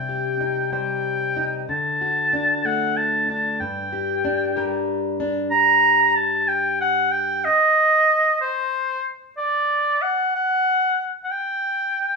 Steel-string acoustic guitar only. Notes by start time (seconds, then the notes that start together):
Already playing: C3 G3
0.09 G4
0.41 D#4
0.72 G3 C5
1.37 D#4
1.69 D3
2.01 F#4
2.33 D4
2.64 A3 A4
3.29 D4
3.60 G2
3.93 G4
4.25 D4
4.56 G3 A#4
5.20 D4